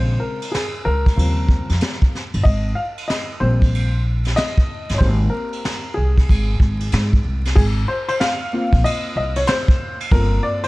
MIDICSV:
0, 0, Header, 1, 4, 480
1, 0, Start_track
1, 0, Key_signature, -4, "major"
1, 0, Tempo, 638298
1, 1847, Time_signature, 4, 2, 24, 8
1, 8030, End_track
2, 0, Start_track
2, 0, Title_t, "Upright piano"
2, 0, Program_c, 0, 0
2, 0, Note_on_c, 0, 49, 54
2, 0, Note_on_c, 0, 56, 44
2, 0, Note_on_c, 0, 60, 53
2, 0, Note_on_c, 0, 72, 98
2, 146, Note_off_c, 0, 72, 0
2, 149, Note_on_c, 0, 70, 74
2, 269, Note_off_c, 0, 49, 0
2, 272, Note_off_c, 0, 56, 0
2, 275, Note_off_c, 0, 60, 0
2, 388, Note_on_c, 0, 68, 78
2, 406, Note_off_c, 0, 70, 0
2, 620, Note_off_c, 0, 68, 0
2, 639, Note_on_c, 0, 70, 97
2, 874, Note_on_c, 0, 49, 48
2, 880, Note_on_c, 0, 53, 48
2, 881, Note_on_c, 0, 55, 44
2, 882, Note_on_c, 0, 60, 56
2, 1570, Note_off_c, 0, 49, 0
2, 1573, Note_off_c, 0, 53, 0
2, 1573, Note_off_c, 0, 70, 0
2, 1574, Note_off_c, 0, 55, 0
2, 1574, Note_off_c, 0, 60, 0
2, 1830, Note_on_c, 0, 75, 92
2, 2061, Note_off_c, 0, 75, 0
2, 2070, Note_on_c, 0, 77, 89
2, 2126, Note_off_c, 0, 77, 0
2, 2315, Note_on_c, 0, 75, 79
2, 2544, Note_off_c, 0, 75, 0
2, 2558, Note_on_c, 0, 72, 85
2, 2562, Note_on_c, 0, 55, 55
2, 2565, Note_on_c, 0, 58, 55
2, 2567, Note_on_c, 0, 60, 65
2, 2909, Note_off_c, 0, 55, 0
2, 2911, Note_off_c, 0, 58, 0
2, 2912, Note_off_c, 0, 60, 0
2, 3013, Note_off_c, 0, 72, 0
2, 3279, Note_on_c, 0, 75, 102
2, 3716, Note_on_c, 0, 73, 73
2, 3739, Note_off_c, 0, 75, 0
2, 3747, Note_on_c, 0, 72, 90
2, 3761, Note_off_c, 0, 73, 0
2, 3762, Note_on_c, 0, 67, 52
2, 3769, Note_on_c, 0, 58, 49
2, 3773, Note_on_c, 0, 60, 54
2, 3803, Note_off_c, 0, 72, 0
2, 3984, Note_on_c, 0, 70, 79
2, 4446, Note_off_c, 0, 70, 0
2, 4468, Note_on_c, 0, 68, 84
2, 5407, Note_off_c, 0, 68, 0
2, 5655, Note_off_c, 0, 67, 0
2, 5658, Note_off_c, 0, 58, 0
2, 5660, Note_off_c, 0, 60, 0
2, 5681, Note_on_c, 0, 68, 95
2, 5735, Note_off_c, 0, 68, 0
2, 5926, Note_on_c, 0, 72, 88
2, 6068, Note_off_c, 0, 72, 0
2, 6079, Note_on_c, 0, 72, 93
2, 6117, Note_off_c, 0, 72, 0
2, 6168, Note_on_c, 0, 77, 97
2, 6414, Note_on_c, 0, 58, 63
2, 6421, Note_on_c, 0, 60, 56
2, 6425, Note_on_c, 0, 65, 66
2, 6617, Note_off_c, 0, 77, 0
2, 6651, Note_on_c, 0, 75, 103
2, 6883, Note_off_c, 0, 75, 0
2, 6894, Note_on_c, 0, 75, 86
2, 7042, Note_on_c, 0, 73, 91
2, 7049, Note_off_c, 0, 75, 0
2, 7124, Note_on_c, 0, 72, 108
2, 7130, Note_off_c, 0, 73, 0
2, 7492, Note_off_c, 0, 72, 0
2, 7580, Note_off_c, 0, 58, 0
2, 7584, Note_off_c, 0, 60, 0
2, 7586, Note_off_c, 0, 65, 0
2, 7605, Note_on_c, 0, 69, 55
2, 7608, Note_on_c, 0, 70, 100
2, 7610, Note_on_c, 0, 58, 56
2, 7613, Note_on_c, 0, 60, 52
2, 7614, Note_on_c, 0, 65, 57
2, 7831, Note_off_c, 0, 70, 0
2, 7843, Note_on_c, 0, 74, 93
2, 7988, Note_off_c, 0, 74, 0
2, 7999, Note_on_c, 0, 72, 95
2, 8030, Note_off_c, 0, 58, 0
2, 8030, Note_off_c, 0, 60, 0
2, 8030, Note_off_c, 0, 65, 0
2, 8030, Note_off_c, 0, 69, 0
2, 8030, Note_off_c, 0, 72, 0
2, 8030, End_track
3, 0, Start_track
3, 0, Title_t, "Upright bass"
3, 0, Program_c, 1, 32
3, 0, Note_on_c, 1, 34, 82
3, 121, Note_off_c, 1, 34, 0
3, 643, Note_on_c, 1, 37, 79
3, 840, Note_off_c, 1, 37, 0
3, 882, Note_on_c, 1, 39, 95
3, 1204, Note_off_c, 1, 39, 0
3, 1277, Note_on_c, 1, 41, 78
3, 1348, Note_off_c, 1, 41, 0
3, 1759, Note_on_c, 1, 31, 86
3, 1830, Note_off_c, 1, 31, 0
3, 1845, Note_on_c, 1, 32, 85
3, 2041, Note_off_c, 1, 32, 0
3, 2562, Note_on_c, 1, 34, 86
3, 3254, Note_off_c, 1, 34, 0
3, 3684, Note_on_c, 1, 31, 83
3, 3753, Note_off_c, 1, 31, 0
3, 3767, Note_on_c, 1, 32, 98
3, 3962, Note_off_c, 1, 32, 0
3, 4492, Note_on_c, 1, 36, 74
3, 4685, Note_off_c, 1, 36, 0
3, 4733, Note_on_c, 1, 32, 84
3, 4926, Note_off_c, 1, 32, 0
3, 4964, Note_on_c, 1, 32, 76
3, 5161, Note_off_c, 1, 32, 0
3, 5209, Note_on_c, 1, 44, 93
3, 5404, Note_off_c, 1, 44, 0
3, 5448, Note_on_c, 1, 36, 86
3, 5643, Note_off_c, 1, 36, 0
3, 5691, Note_on_c, 1, 32, 92
3, 5885, Note_off_c, 1, 32, 0
3, 6564, Note_on_c, 1, 34, 92
3, 6633, Note_off_c, 1, 34, 0
3, 6887, Note_on_c, 1, 36, 73
3, 7082, Note_off_c, 1, 36, 0
3, 7607, Note_on_c, 1, 31, 102
3, 7802, Note_off_c, 1, 31, 0
3, 8030, End_track
4, 0, Start_track
4, 0, Title_t, "Drums"
4, 313, Note_on_c, 9, 51, 54
4, 388, Note_off_c, 9, 51, 0
4, 409, Note_on_c, 9, 38, 97
4, 409, Note_on_c, 9, 44, 49
4, 409, Note_on_c, 9, 51, 69
4, 484, Note_off_c, 9, 44, 0
4, 484, Note_off_c, 9, 51, 0
4, 485, Note_off_c, 9, 38, 0
4, 799, Note_on_c, 9, 36, 78
4, 805, Note_on_c, 9, 51, 51
4, 875, Note_off_c, 9, 36, 0
4, 880, Note_off_c, 9, 51, 0
4, 893, Note_on_c, 9, 51, 68
4, 968, Note_off_c, 9, 51, 0
4, 1118, Note_on_c, 9, 36, 84
4, 1193, Note_off_c, 9, 36, 0
4, 1273, Note_on_c, 9, 51, 57
4, 1287, Note_on_c, 9, 38, 31
4, 1348, Note_off_c, 9, 51, 0
4, 1358, Note_on_c, 9, 44, 50
4, 1358, Note_on_c, 9, 51, 65
4, 1362, Note_off_c, 9, 38, 0
4, 1371, Note_on_c, 9, 38, 94
4, 1433, Note_off_c, 9, 44, 0
4, 1433, Note_off_c, 9, 51, 0
4, 1446, Note_off_c, 9, 38, 0
4, 1519, Note_on_c, 9, 36, 89
4, 1594, Note_off_c, 9, 36, 0
4, 1617, Note_on_c, 9, 38, 30
4, 1692, Note_off_c, 9, 38, 0
4, 1755, Note_on_c, 9, 51, 63
4, 1830, Note_off_c, 9, 51, 0
4, 1844, Note_on_c, 9, 36, 97
4, 1844, Note_on_c, 9, 51, 63
4, 1919, Note_off_c, 9, 36, 0
4, 1919, Note_off_c, 9, 51, 0
4, 2237, Note_on_c, 9, 51, 51
4, 2312, Note_off_c, 9, 51, 0
4, 2331, Note_on_c, 9, 38, 83
4, 2331, Note_on_c, 9, 44, 49
4, 2331, Note_on_c, 9, 51, 61
4, 2406, Note_off_c, 9, 38, 0
4, 2406, Note_off_c, 9, 44, 0
4, 2406, Note_off_c, 9, 51, 0
4, 2722, Note_on_c, 9, 36, 85
4, 2727, Note_on_c, 9, 51, 57
4, 2797, Note_off_c, 9, 36, 0
4, 2803, Note_off_c, 9, 51, 0
4, 2816, Note_on_c, 9, 51, 68
4, 2892, Note_off_c, 9, 51, 0
4, 3193, Note_on_c, 9, 51, 52
4, 3207, Note_on_c, 9, 38, 31
4, 3269, Note_off_c, 9, 51, 0
4, 3282, Note_on_c, 9, 44, 48
4, 3282, Note_on_c, 9, 51, 66
4, 3283, Note_off_c, 9, 38, 0
4, 3295, Note_on_c, 9, 38, 102
4, 3357, Note_off_c, 9, 44, 0
4, 3357, Note_off_c, 9, 51, 0
4, 3370, Note_off_c, 9, 38, 0
4, 3441, Note_on_c, 9, 36, 89
4, 3516, Note_off_c, 9, 36, 0
4, 3679, Note_on_c, 9, 51, 66
4, 3686, Note_on_c, 9, 38, 27
4, 3754, Note_off_c, 9, 51, 0
4, 3761, Note_off_c, 9, 38, 0
4, 3765, Note_on_c, 9, 36, 103
4, 3765, Note_on_c, 9, 51, 69
4, 3840, Note_off_c, 9, 51, 0
4, 3841, Note_off_c, 9, 36, 0
4, 4156, Note_on_c, 9, 51, 47
4, 4231, Note_off_c, 9, 51, 0
4, 4249, Note_on_c, 9, 38, 86
4, 4249, Note_on_c, 9, 44, 49
4, 4249, Note_on_c, 9, 51, 69
4, 4324, Note_off_c, 9, 44, 0
4, 4324, Note_off_c, 9, 51, 0
4, 4325, Note_off_c, 9, 38, 0
4, 4643, Note_on_c, 9, 36, 82
4, 4647, Note_on_c, 9, 51, 61
4, 4718, Note_off_c, 9, 36, 0
4, 4722, Note_off_c, 9, 51, 0
4, 4732, Note_on_c, 9, 36, 85
4, 4736, Note_on_c, 9, 51, 70
4, 4808, Note_off_c, 9, 36, 0
4, 4811, Note_off_c, 9, 51, 0
4, 4962, Note_on_c, 9, 36, 84
4, 5037, Note_off_c, 9, 36, 0
4, 5115, Note_on_c, 9, 51, 57
4, 5190, Note_off_c, 9, 51, 0
4, 5203, Note_on_c, 9, 44, 48
4, 5203, Note_on_c, 9, 51, 71
4, 5215, Note_on_c, 9, 38, 101
4, 5278, Note_off_c, 9, 44, 0
4, 5278, Note_off_c, 9, 51, 0
4, 5291, Note_off_c, 9, 38, 0
4, 5363, Note_on_c, 9, 36, 83
4, 5439, Note_off_c, 9, 36, 0
4, 5603, Note_on_c, 9, 51, 62
4, 5611, Note_on_c, 9, 38, 31
4, 5679, Note_off_c, 9, 51, 0
4, 5686, Note_off_c, 9, 38, 0
4, 5688, Note_on_c, 9, 36, 108
4, 5688, Note_on_c, 9, 49, 80
4, 5763, Note_off_c, 9, 36, 0
4, 5763, Note_off_c, 9, 49, 0
4, 6077, Note_on_c, 9, 51, 53
4, 6152, Note_off_c, 9, 51, 0
4, 6172, Note_on_c, 9, 38, 92
4, 6172, Note_on_c, 9, 44, 52
4, 6172, Note_on_c, 9, 51, 75
4, 6247, Note_off_c, 9, 38, 0
4, 6247, Note_off_c, 9, 44, 0
4, 6247, Note_off_c, 9, 51, 0
4, 6563, Note_on_c, 9, 36, 94
4, 6566, Note_on_c, 9, 51, 56
4, 6638, Note_off_c, 9, 36, 0
4, 6641, Note_off_c, 9, 51, 0
4, 6658, Note_on_c, 9, 51, 80
4, 6733, Note_off_c, 9, 51, 0
4, 7035, Note_on_c, 9, 51, 64
4, 7110, Note_off_c, 9, 51, 0
4, 7120, Note_on_c, 9, 44, 57
4, 7120, Note_on_c, 9, 51, 75
4, 7133, Note_on_c, 9, 38, 106
4, 7196, Note_off_c, 9, 44, 0
4, 7196, Note_off_c, 9, 51, 0
4, 7208, Note_off_c, 9, 38, 0
4, 7281, Note_on_c, 9, 36, 100
4, 7357, Note_off_c, 9, 36, 0
4, 7522, Note_on_c, 9, 51, 67
4, 7597, Note_off_c, 9, 51, 0
4, 7606, Note_on_c, 9, 36, 107
4, 7607, Note_on_c, 9, 51, 68
4, 7682, Note_off_c, 9, 36, 0
4, 7682, Note_off_c, 9, 51, 0
4, 7998, Note_on_c, 9, 51, 57
4, 8030, Note_off_c, 9, 51, 0
4, 8030, End_track
0, 0, End_of_file